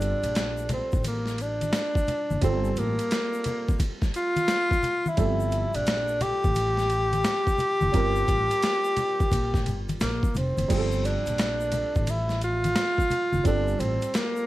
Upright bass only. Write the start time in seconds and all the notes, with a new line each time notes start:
Already playing: G1
0.23 A#1
0.93 A1
2.31 F#1
2.42 G1
2.77 A1
5.18 G1
5.75 A#1
6.44 A1
7.82 F#1
7.94 G1
8.28 A1
9.31 A#1
9.66 G1
10.01 A#1
10.36 F1
10.57 F#1
10.70 G1
11.27 A#1
11.95 A1
13.32 F#1
13.45 G1
13.79 A1